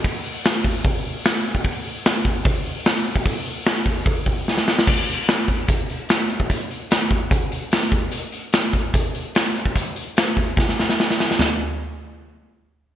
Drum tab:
CC |----------------|----------------|----------------|x---------------|
HH |o-o-o-o-o-o-o-o-|o-o-o-o-o-o-o-o-|o-o-o-o-o-o-----|--x-x-x-x-x-x-x-|
SD |----o-------o---|----o-------oo--|----o-------oooo|----o-------o---|
FT |----------------|----------------|----------------|----------------|
BD |o-----o-o------o|o-----o-o------o|o-----o-o-o-----|o-----o-o------o|

CC |----------------|----------------|----------------|x---------------|
HH |x-x-x-x-x-x-x-x-|x-x-x-x-x-x-x-x-|x-x-x-x---------|----------------|
SD |----o-------oo--|----o-------o---|----o---oooooooo|o---------------|
FT |----------------|----------------|----------------|o---------------|
BD |o-----o-o-----o-|------o-o------o|o-----o-o-------|----------------|